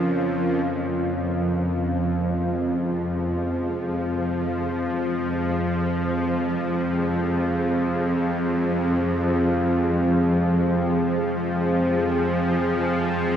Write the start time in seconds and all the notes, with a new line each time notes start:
Already playing: F2 F3 C#4 F4 A#4 F5
0.64 F2 F3 C4 D#5
1.51 G#4